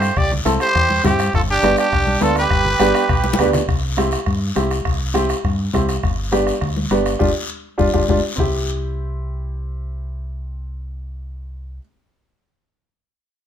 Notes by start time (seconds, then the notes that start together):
Already playing: G2 G4 C5
0.02 bombo rim, short guiro
0.16 C2 G4 D5, bombo low, bombo rim, long guiro
0.32 low conga
0.45 C2 C4 E4 A4, bombo rim, high conga, short guiro
0.60 G4 C5, bombo rim, short guiro
0.75 E2, bombo low, bombo rim, long guiro
0.90 high conga
1.04 G2 C4 E4 G4, bombo low, bombo rim, high conga, low conga, short guiro
1.19 bombo rim, short guiro
1.33 G1 F4 A4, bombo low, bombo rim, long guiro
1.50 D4 G4
1.62 G1 B3 D4 G4, bombo rim, high conga, short guiro
1.77 D4 G4, bombo rim, short guiro
1.92 B1, bombo low, bombo rim, long guiro
2.07 high conga
2.21 D2 B3 D4 F4 A4, bombo rim, high conga, short guiro
2.36 G4 B4, bombo rim, short guiro
2.50 G1, bombo low, bombo rim, long guiro
2.65 low conga
2.79 G1 B3 D4 G4, bombo rim, high conga, short guiro
2.95 bombo rim, short guiro
3.09 B1, bombo low, bombo rim, long guiro
3.24 high conga
3.33 high conga
3.38 D2 B3 D4 G4, bombo rim, short guiro
3.44 low conga
3.53 bombo rim, low conga, short guiro
3.68 C2, bombo low, bombo rim, long guiro
3.97 C4 E4 G4, bombo rim, high conga, short guiro
4.11 bombo rim, short guiro
4.26 G2, bombo low, bombo rim, long guiro
4.55 C2 C4 E4 G4, bombo rim, high conga, short guiro
4.71 bombo rim, short guiro
4.85 C2, bombo low, bombo rim, long guiro
5.14 C4 E4 G4, bombo rim, high conga, short guiro
5.29 bombo rim, short guiro
5.44 G2, bombo low, bombo rim, long guiro
5.73 C2 C4 E4 G4, bombo low, bombo rim, high conga, short guiro
5.89 bombo rim, short guiro
6.03 G1, bombo low, bombo rim, long guiro
6.32 B3 D4 G4, bombo rim, high conga, short guiro
6.47 bombo rim, short guiro
6.61 D2, bombo low, bombo rim, long guiro
6.77 high conga
6.90 G1 B3 D4 G4, bombo rim, high conga, short guiro
7.06 bombo rim, short guiro
7.19 G1 D4 F4 G4, bombo low, high conga, long guiro
7.78 G1 D4 F4 G4, bombo low, high conga, long guiro
7.93 G1 D4 F4 G4, bombo low, high conga, long guiro
8.09 G1 D4 F4 G4, bombo low, high conga, long guiro
8.36 C2 C4 E4, bombo low, low conga, long guiro
8.40 G4